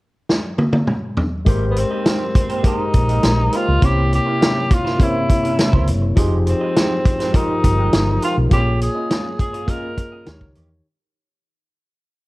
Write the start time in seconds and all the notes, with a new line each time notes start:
0.29 snare
0.58 high tom
0.73 high tom
0.87 mid tom
1.17 floor tom
1.45 G#1 G#3 A#3 D#4 G4 A#4 C5, kick, closed hi-hat
1.71 B3
1.76 C4, muted clean electric guitar stroke, closed hi-hat
1.91 A#3 D#4 G4 D#5
2.05 A#3 D#4 G4 C5, snare, closed hi-hat
2.35 muted clean electric guitar stroke, kick, closed hi-hat
2.49 A#3 D#4 G4 C5, closed hi-hat
2.63 G#3 A#3 D#4 G4 A#4 C5 D#5, kick, closed hi-hat
2.67 D#4
2.94 A#1, muted clean electric guitar stroke, kick, closed hi-hat
3.09 A#3 D#4 G4 D#5, closed hi-hat
3.23 A#1, muted clean electric guitar stroke, snare, closed hi-hat
3.38 muted clean electric guitar stroke
3.52 A#3 D#4 F4 G4 C5, closed hi-hat
3.68 C#2, muted clean electric guitar stroke
3.81 C2 C3 A#3 C#4 E4 A#4 C5 C#5, kick, closed hi-hat
3.85 G4
4.12 G4, muted clean electric guitar stroke, closed hi-hat
4.26 C#4 E4 A#4 C#5
4.41 C#4 E4 A#4 C5, snare, closed hi-hat
4.70 F4, muted clean electric guitar stroke, kick, closed hi-hat
4.85 C#4 E4 A#4 C5, snare
4.99 C3 A#3 C#4 E4 A#4 C5 C#5, kick, closed hi-hat
5.03 E4
5.29 muted clean electric guitar stroke, kick, closed hi-hat
5.43 C#4 E4 A#4 C#5, closed hi-hat
5.59 muted clean electric guitar stroke, snare, closed hi-hat
5.73 C#2 C#4 E4 A#4 C5, kick
5.87 F#1, muted clean electric guitar stroke, closed hi-hat
6.02 muted clean electric guitar stroke
6.16 F1 F3 G#3 D#4 G4 G#4 C5, kick, closed hi-hat
6.46 C4, muted clean electric guitar stroke, closed hi-hat
6.61 G#3 D#4 G4 D#5
6.75 G#3 D#4 G4 C5, snare, closed hi-hat
7.05 muted clean electric guitar stroke, kick, closed hi-hat
7.19 G#3 D#4 G4 C5, snare, closed hi-hat
7.32 F3 G#3 D#4 G4 A#4 C5, kick, closed hi-hat
7.37 D#4
7.64 G1, muted clean electric guitar stroke, kick, closed hi-hat
7.78 G#3 D#4 G4 D#5
7.93 G1, muted clean electric guitar stroke, snare, closed hi-hat
8.08 muted clean electric guitar stroke
8.22 G#3 D#4 F4 G4 C5, closed hi-hat
8.37 B1, muted clean electric guitar stroke
8.50 A#1 A#3 C#4 F4 G4 G#4 C#5, kick, closed hi-hat
8.80 G#4, muted clean electric guitar stroke, closed hi-hat
8.95 C#4 F4 G#4 D#5
9.09 C#4 F4 G#4 C#5, snare, closed hi-hat
9.39 G#4, muted clean electric guitar stroke, kick, closed hi-hat
9.53 C#4 F4 G#4 C#5, closed hi-hat
9.67 A#3 C#4 F4 G#4 A#4 C#5 D#5, kick, closed hi-hat
9.97 muted clean electric guitar stroke, kick, closed hi-hat
10.12 C#4 F4 G#4 D#5
10.25 D#2 D#3 D#4 G4 C#5, muted clean electric guitar stroke, snare, closed hi-hat
10.41 kick
10.55 E2 A#3 D#4 G4 C#5, closed hi-hat
10.70 muted clean electric guitar stroke